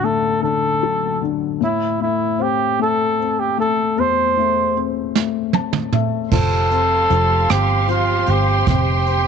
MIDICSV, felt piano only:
0, 0, Header, 1, 2, 480
1, 0, Start_track
1, 0, Tempo, 786370
1, 980, Time_signature, 6, 3, 24, 8
1, 5661, End_track
2, 0, Start_track
2, 0, Title_t, "Felt piano"
2, 0, Program_c, 0, 0
2, 0, Control_c, 0, 64, 127
2, 0, Note_on_c, 0, 33, 52
2, 0, Note_on_c, 0, 50, 42
2, 0, Note_on_c, 0, 54, 35
2, 22, Note_on_c, 0, 57, 46
2, 248, Note_off_c, 0, 50, 0
2, 258, Note_on_c, 0, 50, 41
2, 506, Note_off_c, 0, 54, 0
2, 506, Note_on_c, 0, 54, 42
2, 734, Note_off_c, 0, 50, 0
2, 743, Note_on_c, 0, 50, 41
2, 954, Note_off_c, 0, 33, 0
2, 957, Note_off_c, 0, 57, 0
2, 969, Note_off_c, 0, 54, 0
2, 975, Note_off_c, 0, 50, 0
2, 980, Note_on_c, 0, 45, 49
2, 987, Control_c, 0, 64, 0
2, 1085, Control_c, 0, 64, 127
2, 1223, Note_on_c, 0, 57, 44
2, 1460, Note_on_c, 0, 60, 49
2, 1696, Note_off_c, 0, 57, 0
2, 1705, Note_on_c, 0, 57, 43
2, 1939, Note_off_c, 0, 60, 0
2, 1948, Note_on_c, 0, 60, 34
2, 2178, Note_off_c, 0, 57, 0
2, 2187, Note_on_c, 0, 57, 41
2, 2396, Note_off_c, 0, 45, 0
2, 2424, Note_on_c, 0, 40, 45
2, 2661, Note_off_c, 0, 57, 0
2, 2670, Note_on_c, 0, 57, 42
2, 2880, Note_off_c, 0, 60, 0
2, 2910, Note_on_c, 0, 60, 50
2, 3137, Note_off_c, 0, 57, 0
2, 3147, Note_on_c, 0, 57, 40
2, 3374, Note_off_c, 0, 60, 0
2, 3383, Note_on_c, 0, 60, 34
2, 3385, Note_on_c, 0, 81, 50
2, 3606, Note_off_c, 0, 81, 0
2, 3616, Note_off_c, 0, 57, 0
2, 3622, Note_on_c, 0, 76, 49
2, 3625, Note_on_c, 0, 57, 40
2, 3837, Note_off_c, 0, 40, 0
2, 3844, Note_off_c, 0, 76, 0
2, 3847, Note_off_c, 0, 60, 0
2, 3855, Note_off_c, 0, 57, 0
2, 3861, Note_on_c, 0, 53, 57
2, 3868, Control_c, 0, 64, 0
2, 3989, Control_c, 0, 64, 127
2, 4096, Note_on_c, 0, 60, 46
2, 4325, Note_off_c, 0, 53, 0
2, 4334, Note_on_c, 0, 53, 49
2, 4567, Note_off_c, 0, 60, 0
2, 4576, Note_on_c, 0, 60, 41
2, 4800, Note_off_c, 0, 53, 0
2, 4809, Note_on_c, 0, 53, 39
2, 5040, Note_off_c, 0, 60, 0
2, 5050, Note_on_c, 0, 60, 44
2, 5295, Note_on_c, 0, 48, 54
2, 5523, Note_off_c, 0, 60, 0
2, 5532, Note_on_c, 0, 60, 46
2, 5661, Note_off_c, 0, 48, 0
2, 5661, Note_off_c, 0, 53, 0
2, 5661, Note_off_c, 0, 60, 0
2, 5661, End_track
0, 0, End_of_file